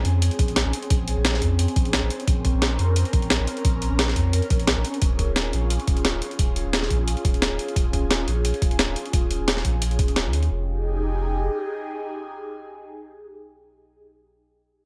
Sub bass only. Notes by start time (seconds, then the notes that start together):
0.05 F2
0.39 A#1
0.65 A#1
0.91 A#1
1.17 A#1
1.42 F2
1.76 A#1
2.03 A#1
2.27 A#1
2.54 A#1
2.79 F2
3.13 A#1
3.40 A#1
3.65 A#1
3.91 A#1
4.16 F2
4.50 A#1
4.77 A#1
5.02 D#1
5.28 D#1
5.53 A#1
5.88 D#1
6.14 D#1
6.39 D#1
6.65 D#1
6.90 A#1
7.25 D#1
7.51 D#1
7.76 D#1
8.03 D#1
8.28 A#1
8.62 D#1
8.88 D#1
9.13 D#1
9.40 D#1
9.65 A#1
9.99 D#1
10.25 D#2
10.50 F1